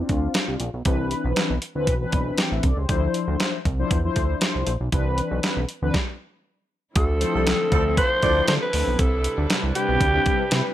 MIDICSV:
0, 0, Header, 1, 7, 480
1, 0, Start_track
1, 0, Tempo, 508475
1, 807, Time_signature, 4, 2, 24, 8
1, 10137, End_track
2, 0, Start_track
2, 0, Title_t, "Alto saxophone"
2, 0, Program_c, 0, 65
2, 6577, Note_on_c, 0, 69, 103
2, 7495, Note_off_c, 0, 69, 0
2, 7531, Note_on_c, 0, 72, 125
2, 7976, Note_off_c, 0, 72, 0
2, 8005, Note_on_c, 0, 72, 105
2, 8063, Note_off_c, 0, 72, 0
2, 8135, Note_on_c, 0, 71, 102
2, 8492, Note_on_c, 0, 69, 96
2, 8506, Note_off_c, 0, 71, 0
2, 8970, Note_off_c, 0, 69, 0
2, 9209, Note_on_c, 0, 67, 127
2, 10130, Note_off_c, 0, 67, 0
2, 10137, End_track
3, 0, Start_track
3, 0, Title_t, "Horn section"
3, 0, Program_c, 1, 61
3, 6805, Note_on_c, 1, 57, 86
3, 6805, Note_on_c, 1, 65, 85
3, 6805, Note_on_c, 1, 72, 87
3, 6908, Note_off_c, 1, 57, 0
3, 6908, Note_off_c, 1, 65, 0
3, 6908, Note_off_c, 1, 72, 0
3, 6936, Note_on_c, 1, 69, 79
3, 6937, Note_on_c, 1, 53, 64
3, 6937, Note_on_c, 1, 64, 68
3, 7026, Note_off_c, 1, 64, 0
3, 7026, Note_off_c, 1, 69, 0
3, 7027, Note_off_c, 1, 53, 0
3, 7286, Note_on_c, 1, 53, 89
3, 7286, Note_on_c, 1, 69, 97
3, 7287, Note_on_c, 1, 64, 89
3, 7388, Note_off_c, 1, 53, 0
3, 7389, Note_off_c, 1, 64, 0
3, 7389, Note_off_c, 1, 69, 0
3, 7531, Note_on_c, 1, 72, 101
3, 7532, Note_on_c, 1, 65, 93
3, 7533, Note_on_c, 1, 57, 89
3, 7631, Note_off_c, 1, 72, 0
3, 7632, Note_off_c, 1, 65, 0
3, 7633, Note_off_c, 1, 57, 0
3, 7770, Note_on_c, 1, 74, 114
3, 7771, Note_on_c, 1, 65, 104
3, 7774, Note_on_c, 1, 57, 112
3, 7961, Note_off_c, 1, 65, 0
3, 7961, Note_off_c, 1, 74, 0
3, 7963, Note_off_c, 1, 57, 0
3, 10137, End_track
4, 0, Start_track
4, 0, Title_t, "Analog polysynth"
4, 0, Program_c, 2, 90
4, 0, Note_on_c, 2, 60, 85
4, 0, Note_on_c, 2, 62, 88
4, 36, Note_on_c, 2, 65, 103
4, 612, Note_off_c, 2, 60, 0
4, 614, Note_off_c, 2, 62, 0
4, 644, Note_off_c, 2, 65, 0
4, 802, Note_on_c, 2, 52, 87
4, 806, Note_on_c, 2, 60, 83
4, 809, Note_on_c, 2, 62, 80
4, 811, Note_on_c, 2, 71, 105
4, 1453, Note_off_c, 2, 52, 0
4, 1455, Note_off_c, 2, 60, 0
4, 1457, Note_off_c, 2, 62, 0
4, 1457, Note_off_c, 2, 71, 0
4, 1650, Note_on_c, 2, 52, 99
4, 1650, Note_on_c, 2, 60, 95
4, 1655, Note_on_c, 2, 62, 84
4, 1656, Note_on_c, 2, 71, 110
4, 1833, Note_off_c, 2, 52, 0
4, 1833, Note_off_c, 2, 60, 0
4, 1835, Note_off_c, 2, 62, 0
4, 1836, Note_off_c, 2, 71, 0
4, 1890, Note_on_c, 2, 52, 101
4, 1894, Note_on_c, 2, 60, 85
4, 1895, Note_on_c, 2, 62, 86
4, 1899, Note_on_c, 2, 71, 109
4, 2248, Note_on_c, 2, 79, 64
4, 2250, Note_off_c, 2, 71, 0
4, 2255, Note_on_c, 2, 74, 55
4, 2368, Note_off_c, 2, 79, 0
4, 2372, Note_off_c, 2, 74, 0
4, 2376, Note_on_c, 2, 76, 73
4, 2381, Note_on_c, 2, 71, 60
4, 2483, Note_off_c, 2, 76, 0
4, 2485, Note_off_c, 2, 71, 0
4, 2490, Note_on_c, 2, 74, 71
4, 2496, Note_on_c, 2, 69, 59
4, 2532, Note_off_c, 2, 52, 0
4, 2534, Note_off_c, 2, 60, 0
4, 2534, Note_off_c, 2, 62, 0
4, 2610, Note_off_c, 2, 74, 0
4, 2613, Note_off_c, 2, 69, 0
4, 2619, Note_on_c, 2, 72, 62
4, 2625, Note_on_c, 2, 67, 54
4, 2723, Note_off_c, 2, 72, 0
4, 2726, Note_on_c, 2, 53, 91
4, 2728, Note_on_c, 2, 62, 83
4, 2730, Note_on_c, 2, 64, 77
4, 2734, Note_on_c, 2, 72, 96
4, 2848, Note_off_c, 2, 67, 0
4, 3375, Note_off_c, 2, 53, 0
4, 3376, Note_off_c, 2, 62, 0
4, 3377, Note_off_c, 2, 64, 0
4, 3379, Note_off_c, 2, 72, 0
4, 3573, Note_on_c, 2, 53, 95
4, 3574, Note_on_c, 2, 62, 84
4, 3578, Note_on_c, 2, 64, 91
4, 3579, Note_on_c, 2, 72, 103
4, 3754, Note_off_c, 2, 53, 0
4, 3755, Note_off_c, 2, 62, 0
4, 3757, Note_off_c, 2, 64, 0
4, 3757, Note_off_c, 2, 72, 0
4, 3814, Note_on_c, 2, 53, 94
4, 3817, Note_on_c, 2, 62, 83
4, 3819, Note_on_c, 2, 64, 87
4, 3820, Note_on_c, 2, 72, 108
4, 4453, Note_off_c, 2, 53, 0
4, 4455, Note_off_c, 2, 62, 0
4, 4456, Note_off_c, 2, 64, 0
4, 4456, Note_off_c, 2, 72, 0
4, 4648, Note_on_c, 2, 52, 91
4, 4651, Note_on_c, 2, 60, 80
4, 4654, Note_on_c, 2, 62, 82
4, 4656, Note_on_c, 2, 71, 105
4, 5296, Note_off_c, 2, 52, 0
4, 5297, Note_off_c, 2, 60, 0
4, 5299, Note_off_c, 2, 62, 0
4, 5300, Note_off_c, 2, 71, 0
4, 5492, Note_on_c, 2, 52, 93
4, 5496, Note_on_c, 2, 60, 87
4, 5498, Note_on_c, 2, 62, 91
4, 5500, Note_on_c, 2, 71, 111
4, 5606, Note_off_c, 2, 52, 0
4, 5608, Note_off_c, 2, 60, 0
4, 5609, Note_off_c, 2, 62, 0
4, 5610, Note_off_c, 2, 71, 0
4, 6804, Note_on_c, 2, 53, 83
4, 6806, Note_on_c, 2, 60, 72
4, 6809, Note_on_c, 2, 62, 74
4, 6810, Note_on_c, 2, 64, 73
4, 6811, Note_on_c, 2, 69, 87
4, 7542, Note_off_c, 2, 53, 0
4, 7543, Note_off_c, 2, 60, 0
4, 7545, Note_off_c, 2, 62, 0
4, 7545, Note_off_c, 2, 64, 0
4, 7546, Note_off_c, 2, 69, 0
4, 7763, Note_on_c, 2, 53, 88
4, 7764, Note_on_c, 2, 60, 74
4, 7766, Note_on_c, 2, 62, 82
4, 7768, Note_on_c, 2, 64, 83
4, 7770, Note_on_c, 2, 69, 94
4, 7863, Note_off_c, 2, 53, 0
4, 7863, Note_off_c, 2, 60, 0
4, 7864, Note_off_c, 2, 62, 0
4, 7865, Note_off_c, 2, 64, 0
4, 7866, Note_off_c, 2, 69, 0
4, 7891, Note_on_c, 2, 53, 74
4, 7893, Note_on_c, 2, 60, 66
4, 7896, Note_on_c, 2, 62, 65
4, 7897, Note_on_c, 2, 64, 73
4, 7898, Note_on_c, 2, 69, 80
4, 8167, Note_off_c, 2, 53, 0
4, 8167, Note_off_c, 2, 60, 0
4, 8169, Note_off_c, 2, 62, 0
4, 8170, Note_off_c, 2, 64, 0
4, 8170, Note_off_c, 2, 69, 0
4, 8245, Note_on_c, 2, 53, 80
4, 8245, Note_on_c, 2, 60, 74
4, 8249, Note_on_c, 2, 62, 73
4, 8251, Note_on_c, 2, 64, 68
4, 8252, Note_on_c, 2, 69, 89
4, 8486, Note_off_c, 2, 53, 0
4, 8486, Note_off_c, 2, 60, 0
4, 8488, Note_off_c, 2, 62, 0
4, 8489, Note_off_c, 2, 64, 0
4, 8490, Note_off_c, 2, 69, 0
4, 9203, Note_on_c, 2, 55, 82
4, 9204, Note_on_c, 2, 60, 78
4, 9206, Note_on_c, 2, 62, 70
4, 9207, Note_on_c, 2, 64, 75
4, 9210, Note_on_c, 2, 71, 90
4, 9483, Note_off_c, 2, 55, 0
4, 9484, Note_off_c, 2, 60, 0
4, 9485, Note_off_c, 2, 62, 0
4, 9485, Note_off_c, 2, 64, 0
4, 9487, Note_off_c, 2, 71, 0
4, 9568, Note_on_c, 2, 55, 86
4, 9569, Note_on_c, 2, 60, 82
4, 9571, Note_on_c, 2, 62, 87
4, 9573, Note_on_c, 2, 64, 84
4, 9574, Note_on_c, 2, 71, 98
4, 9845, Note_off_c, 2, 55, 0
4, 9846, Note_off_c, 2, 60, 0
4, 9847, Note_off_c, 2, 62, 0
4, 9847, Note_off_c, 2, 64, 0
4, 9848, Note_off_c, 2, 71, 0
4, 9920, Note_on_c, 2, 55, 89
4, 9922, Note_on_c, 2, 60, 85
4, 9923, Note_on_c, 2, 62, 81
4, 9926, Note_on_c, 2, 64, 82
4, 9927, Note_on_c, 2, 71, 97
4, 10137, Note_off_c, 2, 55, 0
4, 10137, Note_off_c, 2, 60, 0
4, 10137, Note_off_c, 2, 62, 0
4, 10137, Note_off_c, 2, 64, 0
4, 10137, Note_off_c, 2, 71, 0
4, 10137, End_track
5, 0, Start_track
5, 0, Title_t, "String section"
5, 0, Program_c, 3, 48
5, 6563, Note_on_c, 3, 50, 77
5, 6563, Note_on_c, 3, 53, 92
5, 6563, Note_on_c, 3, 64, 74
5, 6564, Note_on_c, 3, 57, 75
5, 6564, Note_on_c, 3, 60, 74
5, 8466, Note_off_c, 3, 50, 0
5, 8466, Note_off_c, 3, 53, 0
5, 8466, Note_off_c, 3, 57, 0
5, 8467, Note_off_c, 3, 60, 0
5, 8483, Note_on_c, 3, 48, 80
5, 8485, Note_on_c, 3, 55, 75
5, 8485, Note_on_c, 3, 62, 75
5, 8485, Note_on_c, 3, 71, 75
5, 10137, Note_off_c, 3, 48, 0
5, 10137, Note_off_c, 3, 55, 0
5, 10137, Note_off_c, 3, 62, 0
5, 10137, Note_off_c, 3, 64, 0
5, 10137, Note_off_c, 3, 71, 0
5, 10137, End_track
6, 0, Start_track
6, 0, Title_t, "Analog synth bass"
6, 0, Program_c, 4, 38
6, 88, Note_on_c, 4, 38, 91
6, 266, Note_off_c, 4, 38, 0
6, 456, Note_on_c, 4, 36, 77
6, 539, Note_off_c, 4, 36, 0
6, 569, Note_on_c, 4, 34, 94
6, 663, Note_off_c, 4, 34, 0
6, 695, Note_on_c, 4, 35, 75
6, 779, Note_off_c, 4, 35, 0
6, 808, Note_on_c, 4, 36, 112
6, 1081, Note_off_c, 4, 36, 0
6, 1175, Note_on_c, 4, 35, 104
6, 1259, Note_off_c, 4, 35, 0
6, 1417, Note_on_c, 4, 35, 90
6, 1500, Note_off_c, 4, 35, 0
6, 1656, Note_on_c, 4, 38, 88
6, 1767, Note_on_c, 4, 35, 91
6, 1782, Note_off_c, 4, 38, 0
6, 1946, Note_off_c, 4, 35, 0
6, 2011, Note_on_c, 4, 35, 81
6, 2188, Note_off_c, 4, 35, 0
6, 2376, Note_on_c, 4, 33, 88
6, 2460, Note_off_c, 4, 33, 0
6, 2487, Note_on_c, 4, 36, 89
6, 2582, Note_off_c, 4, 36, 0
6, 2615, Note_on_c, 4, 37, 87
6, 2699, Note_off_c, 4, 37, 0
6, 2728, Note_on_c, 4, 38, 110
6, 2906, Note_off_c, 4, 38, 0
6, 3094, Note_on_c, 4, 38, 101
6, 3178, Note_off_c, 4, 38, 0
6, 3450, Note_on_c, 4, 36, 91
6, 3627, Note_off_c, 4, 36, 0
6, 3688, Note_on_c, 4, 40, 90
6, 3866, Note_off_c, 4, 40, 0
6, 3930, Note_on_c, 4, 38, 82
6, 4108, Note_off_c, 4, 38, 0
6, 4297, Note_on_c, 4, 36, 78
6, 4380, Note_off_c, 4, 36, 0
6, 4408, Note_on_c, 4, 34, 90
6, 4503, Note_off_c, 4, 34, 0
6, 4537, Note_on_c, 4, 35, 78
6, 4620, Note_off_c, 4, 35, 0
6, 4649, Note_on_c, 4, 36, 101
6, 4921, Note_off_c, 4, 36, 0
6, 5016, Note_on_c, 4, 35, 106
6, 5099, Note_off_c, 4, 35, 0
6, 5257, Note_on_c, 4, 35, 97
6, 5340, Note_off_c, 4, 35, 0
6, 5497, Note_on_c, 4, 38, 91
6, 5580, Note_off_c, 4, 38, 0
6, 6569, Note_on_c, 4, 38, 111
6, 6841, Note_off_c, 4, 38, 0
6, 6939, Note_on_c, 4, 36, 99
6, 7116, Note_off_c, 4, 36, 0
6, 7289, Note_on_c, 4, 38, 98
6, 7561, Note_off_c, 4, 38, 0
6, 7768, Note_on_c, 4, 38, 94
6, 7946, Note_off_c, 4, 38, 0
6, 8009, Note_on_c, 4, 50, 104
6, 8103, Note_off_c, 4, 50, 0
6, 8248, Note_on_c, 4, 38, 87
6, 8342, Note_off_c, 4, 38, 0
6, 8377, Note_on_c, 4, 35, 83
6, 8460, Note_off_c, 4, 35, 0
6, 8487, Note_on_c, 4, 36, 109
6, 8760, Note_off_c, 4, 36, 0
6, 8854, Note_on_c, 4, 38, 109
6, 8938, Note_off_c, 4, 38, 0
6, 9094, Note_on_c, 4, 36, 93
6, 9178, Note_off_c, 4, 36, 0
6, 9336, Note_on_c, 4, 35, 96
6, 9419, Note_off_c, 4, 35, 0
6, 9446, Note_on_c, 4, 38, 104
6, 9625, Note_off_c, 4, 38, 0
6, 9929, Note_on_c, 4, 48, 98
6, 10023, Note_off_c, 4, 48, 0
6, 10137, End_track
7, 0, Start_track
7, 0, Title_t, "Drums"
7, 85, Note_on_c, 9, 42, 64
7, 88, Note_on_c, 9, 36, 92
7, 179, Note_off_c, 9, 42, 0
7, 183, Note_off_c, 9, 36, 0
7, 323, Note_on_c, 9, 42, 92
7, 329, Note_on_c, 9, 38, 105
7, 417, Note_off_c, 9, 42, 0
7, 423, Note_off_c, 9, 38, 0
7, 563, Note_on_c, 9, 42, 76
7, 658, Note_off_c, 9, 42, 0
7, 804, Note_on_c, 9, 42, 82
7, 807, Note_on_c, 9, 36, 105
7, 898, Note_off_c, 9, 42, 0
7, 902, Note_off_c, 9, 36, 0
7, 1046, Note_on_c, 9, 42, 68
7, 1141, Note_off_c, 9, 42, 0
7, 1286, Note_on_c, 9, 42, 86
7, 1292, Note_on_c, 9, 38, 101
7, 1381, Note_off_c, 9, 42, 0
7, 1386, Note_off_c, 9, 38, 0
7, 1527, Note_on_c, 9, 42, 66
7, 1622, Note_off_c, 9, 42, 0
7, 1767, Note_on_c, 9, 42, 91
7, 1768, Note_on_c, 9, 36, 100
7, 1862, Note_off_c, 9, 36, 0
7, 1862, Note_off_c, 9, 42, 0
7, 2005, Note_on_c, 9, 42, 64
7, 2010, Note_on_c, 9, 36, 88
7, 2100, Note_off_c, 9, 42, 0
7, 2104, Note_off_c, 9, 36, 0
7, 2242, Note_on_c, 9, 42, 84
7, 2249, Note_on_c, 9, 38, 107
7, 2337, Note_off_c, 9, 42, 0
7, 2343, Note_off_c, 9, 38, 0
7, 2484, Note_on_c, 9, 42, 75
7, 2488, Note_on_c, 9, 36, 96
7, 2578, Note_off_c, 9, 42, 0
7, 2582, Note_off_c, 9, 36, 0
7, 2727, Note_on_c, 9, 42, 81
7, 2729, Note_on_c, 9, 36, 97
7, 2822, Note_off_c, 9, 42, 0
7, 2823, Note_off_c, 9, 36, 0
7, 2967, Note_on_c, 9, 42, 68
7, 3061, Note_off_c, 9, 42, 0
7, 3207, Note_on_c, 9, 42, 85
7, 3213, Note_on_c, 9, 38, 111
7, 3302, Note_off_c, 9, 42, 0
7, 3308, Note_off_c, 9, 38, 0
7, 3450, Note_on_c, 9, 36, 95
7, 3450, Note_on_c, 9, 42, 68
7, 3544, Note_off_c, 9, 36, 0
7, 3544, Note_off_c, 9, 42, 0
7, 3688, Note_on_c, 9, 36, 103
7, 3690, Note_on_c, 9, 42, 88
7, 3783, Note_off_c, 9, 36, 0
7, 3784, Note_off_c, 9, 42, 0
7, 3925, Note_on_c, 9, 42, 67
7, 3930, Note_on_c, 9, 36, 86
7, 4020, Note_off_c, 9, 42, 0
7, 4024, Note_off_c, 9, 36, 0
7, 4163, Note_on_c, 9, 42, 90
7, 4169, Note_on_c, 9, 38, 103
7, 4257, Note_off_c, 9, 42, 0
7, 4264, Note_off_c, 9, 38, 0
7, 4404, Note_on_c, 9, 42, 72
7, 4499, Note_off_c, 9, 42, 0
7, 4648, Note_on_c, 9, 42, 82
7, 4649, Note_on_c, 9, 36, 99
7, 4743, Note_off_c, 9, 36, 0
7, 4743, Note_off_c, 9, 42, 0
7, 4888, Note_on_c, 9, 42, 68
7, 4982, Note_off_c, 9, 42, 0
7, 5128, Note_on_c, 9, 42, 81
7, 5134, Note_on_c, 9, 38, 108
7, 5222, Note_off_c, 9, 42, 0
7, 5228, Note_off_c, 9, 38, 0
7, 5367, Note_on_c, 9, 42, 64
7, 5462, Note_off_c, 9, 42, 0
7, 5608, Note_on_c, 9, 36, 96
7, 5611, Note_on_c, 9, 38, 83
7, 5702, Note_off_c, 9, 36, 0
7, 5706, Note_off_c, 9, 38, 0
7, 6566, Note_on_c, 9, 42, 93
7, 6568, Note_on_c, 9, 36, 114
7, 6660, Note_off_c, 9, 42, 0
7, 6663, Note_off_c, 9, 36, 0
7, 6806, Note_on_c, 9, 42, 80
7, 6900, Note_off_c, 9, 42, 0
7, 7048, Note_on_c, 9, 42, 97
7, 7054, Note_on_c, 9, 38, 117
7, 7142, Note_off_c, 9, 42, 0
7, 7148, Note_off_c, 9, 38, 0
7, 7286, Note_on_c, 9, 42, 71
7, 7288, Note_on_c, 9, 36, 107
7, 7380, Note_off_c, 9, 42, 0
7, 7382, Note_off_c, 9, 36, 0
7, 7527, Note_on_c, 9, 36, 116
7, 7528, Note_on_c, 9, 42, 103
7, 7622, Note_off_c, 9, 36, 0
7, 7623, Note_off_c, 9, 42, 0
7, 7764, Note_on_c, 9, 42, 74
7, 7768, Note_on_c, 9, 36, 95
7, 7859, Note_off_c, 9, 42, 0
7, 7862, Note_off_c, 9, 36, 0
7, 8001, Note_on_c, 9, 42, 96
7, 8007, Note_on_c, 9, 38, 114
7, 8095, Note_off_c, 9, 42, 0
7, 8101, Note_off_c, 9, 38, 0
7, 8243, Note_on_c, 9, 46, 86
7, 8337, Note_off_c, 9, 46, 0
7, 8486, Note_on_c, 9, 42, 95
7, 8487, Note_on_c, 9, 36, 112
7, 8580, Note_off_c, 9, 42, 0
7, 8581, Note_off_c, 9, 36, 0
7, 8726, Note_on_c, 9, 42, 79
7, 8820, Note_off_c, 9, 42, 0
7, 8966, Note_on_c, 9, 42, 101
7, 8972, Note_on_c, 9, 38, 113
7, 9060, Note_off_c, 9, 42, 0
7, 9066, Note_off_c, 9, 38, 0
7, 9207, Note_on_c, 9, 42, 70
7, 9301, Note_off_c, 9, 42, 0
7, 9446, Note_on_c, 9, 36, 115
7, 9446, Note_on_c, 9, 42, 100
7, 9540, Note_off_c, 9, 36, 0
7, 9540, Note_off_c, 9, 42, 0
7, 9683, Note_on_c, 9, 42, 70
7, 9687, Note_on_c, 9, 36, 90
7, 9777, Note_off_c, 9, 42, 0
7, 9782, Note_off_c, 9, 36, 0
7, 9922, Note_on_c, 9, 42, 99
7, 9929, Note_on_c, 9, 38, 121
7, 10017, Note_off_c, 9, 42, 0
7, 10023, Note_off_c, 9, 38, 0
7, 10137, End_track
0, 0, End_of_file